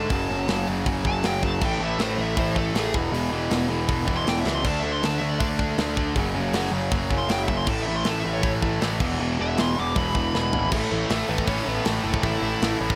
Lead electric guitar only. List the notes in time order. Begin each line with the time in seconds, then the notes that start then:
Already playing: A5
1.07 A5
1.26 G5
1.45 A5
1.65 G5
1.82 E5
2.02 C5
2.21 E5
2.40 C5
2.57 A4
2.77 G#4
4.17 C6
4.28 G5
4.41 E5
4.54 C6
4.67 A5
4.80 E5
4.92 C6
5.05 A5
5.18 E5
5.29 D5
7.18 C6
7.30 G5
7.43 E5
7.57 C6
7.69 A5
7.82 E5
7.96 C6
8.09 A5
8.20 E5
8.33 C#5
9.41 E5
9.60 C6
9.80 D6
9.98 B5
10.72 A3 A4
11.29 B3 B4
11.48 C#4 C#5
11.68 B3 B4
11.86 A3 A4
12.23 E4 E5